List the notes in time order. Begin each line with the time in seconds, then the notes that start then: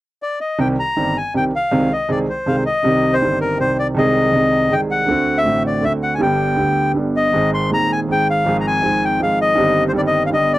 0.23 D5
0.41 D#5
0.58 C2 C3 D#3 G3 C4 G4 G5
0.79 A#5
0.96 G1 G2 D#3 G3 C4 G4
1.17 G#5
1.34 C2 C3 D#3 G3 C4 G4 G5
1.56 F5
1.71 C2 C3 D#3 G#3 C4 G#4
1.93 D#5
2.09 C2 C3 D#3 G#3 C4 G#4 D5
2.30 C5
2.46 C2 C3 D#3 G#3 C4 G#4 F5
2.66 D#5
2.83 C2 C3 D#3 G3 C4 G4
3.13 C5
3.20 G1 G2 D#3 G3 C4 G4
3.41 A#4
3.58 C2 C3 D#3 G3 C4 G4 C5
3.79 D5
3.95 C2 C3 D#3 G#3 C4 D#5
3.99 G#4
4.32 C2 C3 D#3 G#3 C4 G#4
4.70 C2 C3 D#3 G#3 C4 G#4 G5
4.91 F#5
5.08 D2 D3 A3 C4 F#4
5.38 E5
5.43 A1 A2 D3 A3 C4
5.48 F#4
5.67 D5
5.81 D2 D3 A3 C4 E5
5.85 F#4
6.03 F#5
6.15 D3 G#5
6.19 G1 G2 G3 B3 G4 G5
6.56 D2 D3 G3 B3 G4
6.94 G1 G2 D3 G3 B3 G4
7.16 D#5
7.32 G#1 G#2 D#3 G#3 C4
7.36 G#4
7.54 C6
7.69 D#1 D#2 D#3 G#3 C4
7.74 G#4 A#5
7.92 G#5
8.07 G#1 G#2 D#3 G#3 C4
8.11 G#4 G5
8.30 F5
8.44 G#1 G#2 F3 G#3 C4
8.48 G#4
8.60 A#5
8.67 G#5
8.82 G#1 G#2 F3 G#3 C4
8.86 G#4
9.05 G5
9.19 G#1 G#2 F3 G#3 C4 G#4 F5
9.42 D#5
9.55 G1 G2 D#3 G3 C4
9.59 G4
9.88 C5
9.93 G1 G2 D#3 G3 C4
9.97 G4 D5
10.07 D#5
10.26 F5
10.30 G1 G2 D3 G3 B3 G4 D#5
10.53 D5